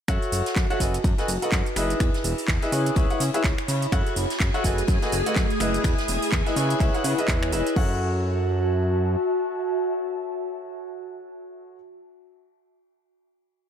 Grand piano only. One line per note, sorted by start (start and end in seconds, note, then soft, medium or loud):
0.08 0.65 F#4 loud
0.08 0.65 A4 medium
0.08 0.65 C#5 medium
0.08 0.65 E5 medium
0.08 0.65 F#5 loud
0.70 0.79 F#4 loud
0.70 0.79 A4 medium
0.70 0.79 C#5 medium
0.70 0.79 E5 medium
0.70 0.79 F#5 loud
0.80 0.94 F#4 medium
0.80 0.94 A4 medium
0.80 0.94 B4 medium
0.80 0.94 D#5 medium
0.80 0.94 G#5 medium
1.18 1.28 F#4 medium
1.18 1.28 A4 medium
1.18 1.28 B4 medium
1.18 1.28 D#5 medium
1.18 1.28 G#5 loud
1.42 1.60 F#4 medium
1.42 1.60 A4 medium
1.42 1.60 B4 medium
1.42 1.60 D#5 medium
1.42 1.60 F#5 medium
1.76 2.59 E4 medium
1.76 2.59 G#4 medium
1.76 2.59 B4 medium
1.76 2.59 D#5 medium
1.76 2.59 E5 medium
2.62 2.70 E4 medium
2.62 2.70 G#4 medium
2.62 2.70 B4 medium
2.62 2.70 D#5 medium
2.62 2.70 E5 loud
2.72 2.94 E4 medium
2.72 2.94 G#4 medium
2.72 2.94 B4 medium
2.72 2.94 C#5 medium
2.72 2.94 G#5 loud
2.96 3.08 E4 loud
2.96 3.08 G#4 medium
2.96 3.08 B4 medium
2.96 3.08 C#5 medium
2.96 3.08 E5 loud
3.10 3.20 E4 medium
3.10 3.20 G#4 medium
3.10 3.20 B4 medium
3.10 3.20 C#5 medium
3.10 3.20 F#5 loud
3.34 3.44 E4 loud
3.34 3.44 G#4 medium
3.34 3.44 B4 medium
3.34 3.44 C#5 medium
3.34 3.44 E5 loud
3.92 4.12 F#4 medium
3.92 4.12 A4 medium
3.92 4.12 C#5 medium
3.92 4.12 E5 medium
3.92 4.12 F#5 loud
4.54 4.63 F#4 loud
4.54 4.63 A4 medium
4.54 4.63 C#5 loud
4.54 4.63 E5 medium
4.54 4.63 F#5 loud
4.64 4.78 F#4 medium
4.64 4.78 A4 medium
4.64 4.78 B4 medium
4.64 4.78 D#5 medium
4.64 4.78 G#5 loud
5.02 5.12 F#4 medium
5.02 5.12 A4 medium
5.02 5.12 B4 medium
5.02 5.12 D#5 medium
5.02 5.12 G#5 loud
5.26 5.44 F#4 medium
5.26 5.44 A4 medium
5.26 5.44 B4 medium
5.26 5.44 D#5 medium
5.26 5.44 F#5 medium
5.60 6.43 E4 medium
5.60 6.43 G#4 medium
5.60 6.43 B4 medium
5.60 6.43 D#5 medium
5.60 6.43 E5 medium
6.46 6.54 E4 medium
6.46 6.54 G#4 medium
6.46 6.54 B4 medium
6.46 6.54 D#5 medium
6.46 6.54 E5 loud
6.56 6.78 E4 medium
6.56 6.78 G#4 medium
6.56 6.78 B4 medium
6.56 6.78 C#5 medium
6.56 6.78 G#5 loud
6.80 6.92 E4 loud
6.80 6.92 G#4 medium
6.80 6.92 B4 medium
6.80 6.92 C#5 medium
6.80 6.92 E5 loud
6.94 7.02 E4 loud
6.94 7.02 G#4 medium
6.94 7.02 B4 medium
6.94 7.02 C#5 medium
6.94 7.02 F#5 loud
7.04 7.16 E4 medium
7.04 7.16 G#4 medium
7.04 7.16 B4 medium
7.04 7.16 C#5 medium
7.04 7.16 F#5 medium
7.18 7.50 E4 medium
7.18 7.50 G#4 medium
7.18 7.50 B4 medium
7.18 7.50 D#5 medium
7.18 7.50 E5 medium
7.52 7.72 E4 medium
7.52 7.72 G#4 medium
7.52 7.72 B4 medium
7.52 7.72 D#5 medium
7.52 7.72 E5 medium
7.76 11.75 F#4 medium
7.76 11.75 A4 medium
7.76 11.75 C#5 medium
7.76 11.75 E5 medium
7.76 11.75 F#5 loud